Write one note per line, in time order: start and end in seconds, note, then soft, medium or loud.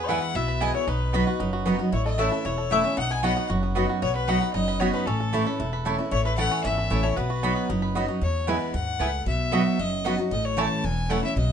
0.00 0.18 E2 medium
0.00 0.33 E2 medium
0.00 0.19 B3 medium
0.00 0.32 G#4 medium
0.00 0.10 B4 loud
0.08 0.34 E3 medium
0.08 0.34 G#3 medium
0.08 0.18 B3 loud
0.08 0.35 B3 medium
0.08 0.34 E4 medium
0.08 0.18 E4 medium
0.08 0.35 E4 loud
0.08 0.18 B4 loud
0.08 0.37 F#5 medium
0.08 0.36 F#5 medium
0.08 0.18 G#5 loud
0.22 0.47 B4 medium
0.35 0.70 B1 medium
0.35 0.85 B2 loud
0.35 0.72 E4 medium
0.35 0.64 E5 loud
0.35 0.62 E5 medium
0.48 0.85 B4 medium
0.60 0.74 E3 medium
0.60 0.74 G#3 medium
0.60 0.70 B3 medium
0.60 0.74 B3 loud
0.60 0.70 E4 medium
0.60 0.74 E4 medium
0.60 0.88 G#4 medium
0.60 0.70 B4 medium
0.60 0.75 D#5 medium
0.60 0.70 G#5 medium
0.74 0.88 B3 medium
0.74 0.87 E4 medium
0.74 0.89 C#5 medium
0.74 0.90 C#5 medium
0.87 1.22 B1 medium
0.87 1.38 B2 medium
0.87 1.24 D#4 medium
0.87 1.67 B4 medium
1.13 1.26 F#3 medium
1.13 1.22 B3 medium
1.13 1.27 B3 loud
1.13 1.27 D#4 loud
1.13 1.23 F#4 loud
1.13 1.26 F#4 loud
1.13 1.51 B4 medium
1.13 1.23 D#5 loud
1.13 1.23 B5 loud
1.27 1.40 D#4 soft
1.27 1.52 F#4 medium
1.27 1.40 F#4 medium
1.40 1.75 F#1 medium
1.40 1.90 F#2 medium
1.40 1.65 D#4 medium
1.53 1.90 F#4 medium
1.65 1.79 F#3 loud
1.65 1.75 B3 medium
1.65 1.79 B3 medium
1.65 1.92 D#4 medium
1.65 1.79 D#4 loud
1.65 1.75 F#4 medium
1.65 1.77 F#4 loud
1.65 1.75 D#5 medium
1.65 1.76 B5 medium
1.79 1.93 B3 medium
1.79 1.93 D#4 medium
1.79 1.92 F#4 medium
1.92 2.28 A1 loud
1.92 2.42 A2 medium
1.92 2.29 E4 medium
1.92 2.05 C#5 medium
2.06 2.31 A4 medium
2.06 2.21 D#5 medium
2.06 2.19 D#5 medium
2.18 2.31 E3 loud
2.18 2.27 A3 loud
2.18 2.31 A3 medium
2.18 2.32 C#4 loud
2.18 2.28 E4 loud
2.18 2.30 E4 loud
2.18 2.56 B4 medium
2.18 2.28 C#5 medium
2.18 2.46 E5 medium
2.18 2.47 E5 medium
2.18 2.28 A5 loud
2.31 2.45 C#4 soft
2.31 2.44 E4 medium
2.31 2.57 A4 medium
2.45 2.80 E1 medium
2.45 2.95 E2 medium
2.45 2.70 E4 medium
2.45 2.74 C#5 medium
2.45 2.72 C#5 medium
2.58 2.95 A4 medium
2.70 2.83 E3 medium
2.70 2.80 A3 medium
2.70 2.84 A3 medium
2.70 2.84 C#4 loud
2.70 2.97 E4 medium
2.70 2.80 E4 medium
2.70 2.82 E4 medium
2.70 2.81 C#5 medium
2.70 2.98 E5 medium
2.70 2.81 A5 loud
2.83 2.98 C#4 medium
2.83 2.97 C#4 medium
2.83 2.97 E4 medium
2.97 3.33 B1 medium
2.97 3.47 B2 medium
2.97 3.34 D#4 medium
2.97 3.11 F#5 medium
2.97 3.13 F#5 medium
3.11 3.36 B3 medium
3.11 3.24 G#5 medium
3.11 3.24 G#5 loud
3.23 3.36 F#3 medium
3.23 3.32 B3 loud
3.23 3.36 B3 medium
3.23 3.36 D#4 loud
3.23 3.32 F#4 medium
3.23 3.48 F#4 medium
3.23 3.35 F#4 loud
3.23 3.33 D#5 loud
3.23 3.49 F#5 medium
3.23 3.33 B5 loud
3.36 3.62 B3 medium
3.36 3.50 D#4 soft
3.36 3.49 F#4 medium
3.50 3.85 F#1 medium
3.50 4.00 F#2 medium
3.50 3.87 F#4 medium
3.63 4.00 B3 medium
3.75 4.01 F#3 medium
3.75 3.85 B3 medium
3.75 4.01 B3 medium
3.75 4.01 D#4 loud
3.75 3.85 F#4 medium
3.75 4.02 F#4 loud
3.75 4.13 B4 medium
3.75 3.85 D#5 medium
3.75 3.85 B5 medium
3.90 4.26 F#4 medium
4.02 4.37 B1 medium
4.02 4.52 B2 medium
4.02 4.39 B3 medium
4.02 4.14 C#5 medium
4.02 4.15 C#5 loud
4.15 4.29 B4 loud
4.15 4.28 B4 medium
4.28 4.41 F#3 medium
4.28 4.37 B3 medium
4.28 4.41 B3 medium
4.28 4.41 D#4 medium
4.28 4.53 D#4 medium
4.28 4.37 F#4 medium
4.28 4.40 F#4 loud
4.28 4.38 D#5 loud
4.28 4.53 F#5 medium
4.28 4.55 F#5 medium
4.28 4.38 B5 loud
4.41 4.55 D#4 medium
4.41 4.54 F#4 medium
4.41 4.67 B4 medium
4.53 4.90 F#1 medium
4.53 5.04 F#2 medium
4.53 4.91 D#4 medium
4.53 4.81 D#5 medium
4.53 4.80 D#5 medium
4.68 5.05 B4 medium
4.80 5.05 F#3 medium
4.80 4.89 B3 medium
4.80 5.06 B3 medium
4.80 5.06 D#4 medium
4.80 4.90 F#4 medium
4.80 5.07 F#4 medium
4.80 5.06 F#4 medium
4.80 4.93 C#5 medium
4.80 4.90 D#5 loud
4.80 4.90 B5 loud
4.93 5.07 D#4 medium
4.93 5.07 B4 medium
5.06 5.42 A1 medium
5.06 5.57 A2 medium
5.06 5.44 C#4 medium
5.06 5.85 A4 medium
5.06 5.86 A4 medium
5.20 5.57 A4 medium
5.33 5.46 E3 medium
5.33 5.42 A3 loud
5.33 5.46 A3 loud
5.33 5.46 C#4 loud
5.33 5.42 E4 loud
5.33 5.59 E4 medium
5.33 5.45 E4 loud
5.33 5.42 C#5 loud
5.33 5.43 A5 loud
5.46 5.60 C#4 soft
5.46 5.59 E4 medium
5.46 5.72 B4 medium
5.60 5.95 E1 medium
5.60 6.09 E2 medium
5.60 5.96 E4 medium
5.73 6.10 B4 medium
5.85 5.98 E3 medium
5.85 5.95 A3 medium
5.85 5.98 A3 medium
5.85 5.99 C#4 medium
5.85 5.95 E4 medium
5.85 5.97 E4 loud
5.85 6.23 A4 medium
5.85 5.95 C#5 loud
5.85 5.95 A5 medium
5.98 6.12 C#4 medium
5.98 6.11 E4 medium
5.98 6.24 E4 medium
6.11 6.47 A1 medium
6.11 6.61 A2 medium
6.11 6.49 A3 medium
6.11 6.24 C#5 medium
6.11 6.24 C#5 loud
6.25 6.62 E4 medium
6.25 6.37 B4 medium
6.37 6.63 E3 medium
6.37 6.47 A3 medium
6.37 6.63 A3 medium
6.37 6.63 C#4 loud
6.37 6.47 E4 loud
6.37 6.64 E4 loud
6.37 6.75 A4 medium
6.37 6.47 C#5 loud
6.37 6.62 F#5 loud
6.37 6.62 F#5 medium
6.37 6.48 A5 loud
6.51 6.88 C#4 medium
6.64 6.87 G#1 medium
6.64 7.14 E2 loud
6.64 7.01 E4 medium
6.64 7.05 E5 loud
6.64 7.03 E5 medium
6.78 7.02 A4 medium
6.90 7.13 A1 medium
6.90 7.03 E3 medium
6.90 6.99 A3 medium
6.90 7.03 A3 medium
6.90 7.17 C#4 medium
6.90 7.04 C#4 loud
6.90 7.00 E4 medium
6.90 7.02 E4 loud
6.90 7.00 C#5 medium
6.90 7.00 A5 medium
7.03 7.17 C#4 medium
7.03 7.16 E4 medium
7.03 7.17 A4 medium
7.03 7.16 C#5 medium
7.03 7.18 C#5 loud
7.16 7.52 B1 medium
7.16 7.67 B2 medium
7.16 7.54 B3 medium
7.16 7.95 B4 medium
7.30 7.67 F#4 medium
7.43 7.68 F#3 medium
7.43 7.52 B3 loud
7.43 7.68 B3 loud
7.43 7.68 D#4 medium
7.43 7.69 D#4 medium
7.43 7.52 F#4 loud
7.43 7.69 F#4 medium
7.43 7.52 D#5 medium
7.43 7.53 B5 loud
7.56 7.81 B4 medium
7.69 8.04 F#1 medium
7.69 8.19 F#2 medium
7.69 8.06 D#4 medium
7.82 8.19 B4 medium
7.95 8.08 F#3 medium
7.95 8.04 B3 medium
7.95 8.08 B3 medium
7.95 8.09 D#4 medium
7.95 8.22 F#4 medium
7.95 8.04 F#4 medium
7.95 8.07 F#4 loud
7.95 8.05 D#5 medium
7.95 8.05 B5 medium
8.08 8.22 D#4 medium
8.08 8.22 D#4 soft
8.08 8.21 F#4 medium
8.21 8.71 E2 medium
8.21 8.57 E2 medium
8.21 8.50 C#5 medium
8.47 8.72 E3 medium
8.47 8.73 G#3 loud
8.47 8.56 B3 medium
8.47 8.54 B3 medium
8.47 8.73 B3 loud
8.47 8.57 E4 medium
8.47 8.54 E4 medium
8.47 8.73 E4 medium
8.47 8.54 G#4 medium
8.47 8.57 B4 loud
8.47 8.74 B4 medium
8.47 8.57 G#5 loud
8.74 8.96 D#2 medium
8.74 8.99 G#2 medium
8.74 9.23 F#5 medium
8.99 9.22 C#2 medium
8.99 9.25 A2 medium
8.99 9.09 B3 medium
8.99 9.06 B3 medium
8.99 9.09 E4 medium
8.99 9.07 E4 medium
8.99 9.07 G#4 medium
8.99 9.09 B4 medium
8.99 9.09 G#5 loud
9.26 9.61 B1 medium
9.26 9.76 B2 medium
9.26 9.81 E5 loud
9.52 9.77 F#3 medium
9.52 9.61 B3 loud
9.52 9.77 B3 medium
9.52 9.59 B3 medium
9.52 9.78 D#4 loud
9.52 9.59 D#4 medium
9.52 9.61 F#4 medium
9.52 9.78 F#4 loud
9.52 9.59 F#4 medium
9.52 9.62 D#5 loud
9.52 9.62 B5 loud
9.79 10.14 F#1 medium
9.79 10.29 F#2 medium
9.79 10.19 D#5 loud
10.04 10.18 F#3 medium
10.04 10.14 B3 medium
10.04 10.18 B3 medium
10.04 10.11 B3 medium
10.04 10.18 D#4 loud
10.04 10.12 D#4 medium
10.04 10.14 F#4 medium
10.04 10.12 F#4 medium
10.04 10.17 F#4 medium
10.04 10.14 D#5 medium
10.04 10.15 B5 loud
10.18 10.32 D#4 medium
10.18 10.31 F#4 medium
10.31 10.66 A1 medium
10.31 10.81 A2 medium
10.31 10.46 D#5 medium
10.45 10.60 C#5 loud
10.57 10.82 E3 medium
10.57 10.66 A3 loud
10.57 10.83 A3 loud
10.57 10.83 C#4 medium
10.57 10.64 C#4 medium
10.57 10.67 E4 loud
10.57 10.83 E4 loud
10.57 10.64 E4 medium
10.57 10.64 A4 medium
10.57 10.67 C#5 loud
10.57 10.86 A5 loud
10.57 10.67 A5 loud
10.84 11.19 E1 medium
10.84 11.34 E2 loud
10.84 11.12 G#5 loud
11.09 11.23 E3 medium
11.09 11.19 A3 medium
11.09 11.23 A3 loud
11.09 11.16 C#4 medium
11.09 11.23 C#4 medium
11.09 11.19 E4 medium
11.09 11.16 E4 medium
11.09 11.22 E4 loud
11.09 11.17 A4 medium
11.09 11.19 C#5 loud
11.09 11.24 F#5 medium
11.09 11.19 A5 loud
11.23 11.37 C#4 medium
11.23 11.36 E4 medium
11.23 11.36 E5 medium
11.36 11.52 B1 loud
11.36 11.52 B2 medium
11.36 11.52 D#5 loud